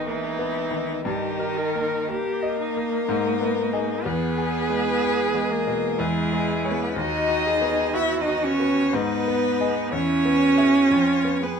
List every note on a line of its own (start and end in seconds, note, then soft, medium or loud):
0.00 1.01 G#2 medium
0.00 0.39 B3 soft
0.00 1.01 D#4 medium
0.00 1.07 G#4 soft
0.00 1.07 D#5 soft
0.06 1.04 E3 medium
0.06 0.39 A#3 soft
0.06 1.04 E4 medium
0.39 0.91 B3 medium
0.71 1.04 D#3 soft
1.05 3.04 G2 medium
1.05 2.12 D#3 medium
1.05 2.10 D#4 medium
1.05 1.58 G4 medium
1.39 1.95 A#4 soft
1.57 2.09 A#4 medium
1.75 2.29 A#3 soft
2.09 4.05 A#3 medium
2.09 2.58 G4 medium
2.09 2.62 A#4 soft
2.09 4.04 A#4 medium
2.43 2.94 D#5 medium
2.60 3.07 D#4 medium
2.77 3.08 A#3 soft
3.08 4.03 G#2 medium
3.08 4.08 D#4 medium
3.41 3.92 B3 medium
3.73 4.02 G#4 soft
3.73 4.02 D#5 soft
4.04 5.95 E2 medium
4.04 5.52 B3 medium
4.04 6.00 G#4 medium
4.04 5.51 B4 medium
4.38 4.89 G#4 soft
4.70 5.21 G#3 soft
5.03 5.54 G#4 soft
5.35 5.86 G#3 soft
5.50 5.99 A#3 medium
5.50 6.01 A#4 medium
5.67 5.99 B2 soft
5.97 6.94 E2 medium
5.97 6.72 G#3 medium
5.97 6.96 E4 medium
5.97 6.72 G#4 medium
6.33 6.84 G#3 medium
6.64 6.93 G#4 soft
6.64 6.94 C#5 soft
6.70 6.95 B3 medium
6.70 6.98 B4 medium
6.96 8.90 D#2 medium
6.96 7.97 D#4 medium
6.96 7.48 F#4 medium
6.96 7.95 D#5 medium
7.28 7.82 F#4 soft
7.46 7.97 G#4 medium
7.62 8.15 B3 soft
7.94 8.22 E4 medium
7.94 8.47 F#4 medium
7.94 8.96 F#4 medium
7.94 8.19 E5 medium
8.21 8.47 D#4 medium
8.21 8.47 D#5 medium
8.27 8.80 D#5 medium
8.45 8.96 C#4 medium
8.45 8.96 C#5 medium
8.59 8.93 B3 soft
8.93 9.89 G#2 medium
8.93 9.94 B3 medium
8.93 9.93 D#4 medium
8.93 9.92 B4 medium
9.28 9.79 B3 medium
9.61 9.89 G#4 soft
9.61 9.89 D#5 soft
9.92 10.88 E2 medium
9.92 11.44 C#4 loud
9.92 10.39 E4 medium
9.92 11.45 C#5 medium
10.25 10.78 B3 soft
10.40 10.93 F#4 medium
10.58 10.88 G#4 soft
10.58 10.88 E5 soft
10.91 11.60 F2 medium
10.91 11.41 F4 medium
11.24 11.60 B3 soft
11.42 11.60 B3 medium
11.42 11.60 G#4 medium
11.42 11.60 B4 medium